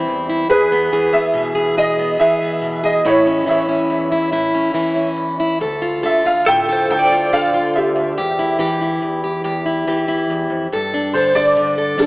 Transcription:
Already playing: E3 G3 C4 E4
0.08 E2
0.29 E4
0.50 E2 G#4 B4
0.72 B3
0.93 E3 G#4
1.13 B3 E5
1.34 B2
1.55 G#4
1.77 E2 G#4 D#5
1.99 B3
2.19 E3 G#4 E5
2.42 B3
2.61 B2
2.84 G#4 D#5
3.05 A2 E4 C#5
3.27 C#4
3.46 E3 E4 C#5 E5
3.69 C#4
3.90 E2
4.12 E4
4.32 A2 E4
4.55 C#4
4.74 E3 E4
4.96 C#4
5.17 E2
5.40 E4
5.61 D2 A4
5.82 F4
6.03 D3 A4 E5
6.25 F4 F5
6.46 A2 A4 G5
6.69 A4 C5
6.90 D2 A4 G5
6.99 D5
7.12 F4
7.33 D3 A4 F5
7.54 F4
7.75 G4 E5
7.96 D2
8.17 E2 G4
8.39 E4
8.59 E3 G4
8.81 E4
9.02 E2
9.24 G4
9.44 E2 G4
9.66 E4
9.87 E3 G4
10.08 E4
10.30 E2
10.50 F2
10.72 G2 A4
10.94 D4
11.13 D3 A4 C5
11.35 D4 D5
11.56 D3
11.78 A4
11.98 G2 D4 A4

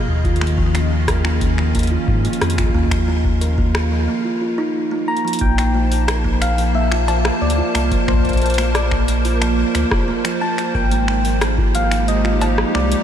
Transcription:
Already playing: F4 G#4 D#5 F5
0.08 D#2 D#3
0.25 F4, kick, closed hi-hat
0.36 closed hi-hat
0.41 A#3, finger snap
0.47 closed hi-hat
0.52 C#4
0.58 F3, kick
0.75 A#3, finger snap, closed hi-hat
0.91 A#3
1.08 A#4, kick, cross-stick, closed hi-hat
1.25 A#3, finger snap
1.41 kick, closed hi-hat
1.58 F3, finger snap
1.75 A#3, kick, closed hi-hat
1.79 closed hi-hat
1.83 closed hi-hat
1.87 closed hi-hat
1.91 F4
2.08 G#2 F3, kick
2.25 A#3, closed hi-hat
2.33 closed hi-hat
2.41 F2, cross-stick, closed hi-hat
2.50 closed hi-hat
2.58 F4, finger snap, kick, closed hi-hat
2.64 kick
2.69 kick
2.74 D#2 A#3, kick
2.80 kick
2.86 kick
2.91 F3, finger snap, kick, closed hi-hat
3.08 A#3
3.25 A#3, kick
3.41 A#4, closed hi-hat
3.58 A#3, kick
3.75 finger snap, cross-stick
3.91 F3
4.08 A#3
4.25 F4
4.41 F4
4.58 D#4
4.91 A#3
5.08 A#3 A#5
5.17 closed hi-hat
5.25 F3, closed hi-hat
5.33 closed hi-hat
5.39 A#1 A#3 G5, kick, closed hi-hat
5.58 F3 C5, finger snap, closed hi-hat
5.64 A5
5.75 A#3
5.91 A#3, open hi-hat
6.08 A#4, finger snap, cross-stick, closed hi-hat
6.24 A#3, kick
6.42 F5, finger snap, closed hi-hat
6.58 F3, open hi-hat
6.75 A#3 E5
6.91 F4 A#4, finger snap
7.08 F3, closed hi-hat, cowbell
7.25 A#3, finger snap, cross-stick
7.42 D2 D5
7.50 closed hi-hat
7.58 F4
7.75 C2 A#3, finger snap, open hi-hat
7.91 F3, kick, closed hi-hat
8.08 A#1 A#3 C5, finger snap, kick
8.14 kick
8.19 kick
8.25 A#3, kick, closed hi-hat
8.29 kick, closed hi-hat
8.33 kick, closed hi-hat
8.37 closed hi-hat
8.42 A#4, closed hi-hat
8.46 closed hi-hat
8.50 closed hi-hat
8.54 closed hi-hat
8.58 A#3, finger snap, open hi-hat
8.75 D5, cross-stick, closed hi-hat
8.91 F3, finger snap, kick
9.08 A#3, closed hi-hat
9.25 F4, open hi-hat
9.42 F3, finger snap, closed hi-hat
9.58 A#3
9.75 D2, finger snap, closed hi-hat
9.91 F1 F4, kick, cross-stick
10.08 A#3
10.25 F3, finger snap, closed hi-hat
10.41 A#3 A5
10.58 A#3, finger snap, closed hi-hat
10.75 G#1 G#3 A#4 G5, kick
10.87 D#4
10.91 A#3, closed hi-hat
11.08 finger snap
11.25 F3, open hi-hat
11.41 A#3, finger snap, cross-stick, closed hi-hat
11.51 G4
11.58 F4, kick
11.75 F3 F5, closed hi-hat
11.91 A#3, finger snap, open hi-hat
12.08 D#5, closed hi-hat
12.25 F4, finger snap
12.41 A#3, closed hi-hat, cowbell
12.58 F3, cross-stick
12.75 C2 A#3 D5, finger snap
12.91 A#3, closed hi-hat

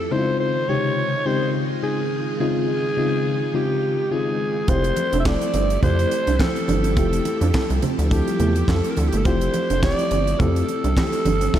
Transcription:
Already playing: A4
0.11 C#3 D#3 G#3 C4 D#4 E4 F4 C5
0.19 F4
0.40 C5
0.69 C3 C#3 G#3 D#4 G4 C#5
1.25 C#3 G#3 C4 D#4 G4 C5
1.83 C#3 G#3 C4 D#4 G#4
2.40 C#3 G#3 C4 D#4 F4 G#4
2.97 C#3 G#3 C4 D#4 F4
3.54 C#3 G#3 C4 D#4 F4 G4
4.11 C#3 G#3 C4 D#4 F4 G#4
4.68 F1 F3 A3 C4 E4 F4 G4 A4 C5, kick, closed hi-hat
4.84 closed hi-hat
4.97 muted clean electric guitar stroke, closed hi-hat, muted conga
5.13 F1 D4, closed hi-hat
5.20 E5
5.25 A3 C4 E4 A4 D5, kick, snare, clap, high conga
5.41 closed hi-hat
5.54 G1 C4, closed hi-hat, muted conga
5.70 closed hi-hat
5.82 F2 A3 C4 E4 G4 C5, kick, closed hi-hat, low conga
5.99 closed hi-hat
6.11 muted clean electric guitar stroke, closed hi-hat, muted conga
6.27 C2 D4, closed hi-hat
6.39 A3 C4 E4 A4, kick, snare, clap, high conga
6.56 closed hi-hat
6.68 G1 D4, closed hi-hat, high conga
6.84 C4, closed hi-hat
6.96 F1 A3 C4 E4 F4 G4 A4, kick, closed hi-hat
7.13 closed hi-hat
7.25 muted clean electric guitar stroke, closed hi-hat, muted conga
7.41 F2 D4, closed hi-hat
7.54 A3 C4 E4 A4, kick, snare, clap, high conga
7.70 C2, closed hi-hat
7.82 C4, closed hi-hat, muted conga, low conga
7.99 D2, closed hi-hat
8.11 A3 C4 E4 G4 A4, muted clean electric guitar stroke, kick, closed hi-hat
8.27 G3, closed hi-hat
8.40 E2 A3, closed hi-hat, muted conga, low conga
8.56 closed hi-hat
8.68 F2 G3 A3 C4 E4 G4 A4, kick, snare, clap, high conga
8.76 A4
8.84 muted clean electric guitar stroke, closed hi-hat
8.90 A#4
8.97 D2 A4, closed hi-hat, high conga
9.09 G4, closed hi-hat
9.13 G1 A3
9.17 A4
9.25 F1 A3 C4 E4 F4 G4 C5, kick, closed hi-hat
9.41 closed hi-hat
9.54 muted clean electric guitar stroke, closed hi-hat, muted conga
9.70 F1 D4, closed hi-hat
9.83 A3 C4 E4 G4 D5, kick, snare, clap, high conga
9.99 closed hi-hat
10.11 G1 C4, closed hi-hat, muted conga
10.27 closed hi-hat
10.39 F2 A3 C4 E4 G4 A4, kick, closed hi-hat, low conga
10.56 closed hi-hat
10.68 muted clean electric guitar stroke, closed hi-hat, muted conga
10.84 C2 D4, closed hi-hat
10.97 A3 C4 E4 G4, kick, snare, clap, high conga
11.13 closed hi-hat
11.25 G1 D4, closed hi-hat, high conga
11.41 C4, closed hi-hat
11.54 F1 A3 C4 E4 A4, kick, snare, crash

